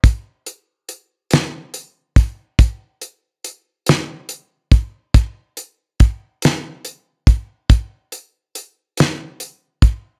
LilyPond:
\new DrumStaff \with { instrumentName = "Drums" } \drummode { \time 6/8 \tempo 4. = 47 <hh bd>8 hh8 hh8 <hh sn>8 hh8 <hh bd>8 | <hh bd>8 hh8 hh8 <hh sn>8 hh8 <hh bd>8 | <hh bd>8 hh8 <hh bd>8 <hh sn>8 hh8 <hh bd>8 | <hh bd>8 hh8 hh8 <hh sn>8 hh8 <hh bd>8 | }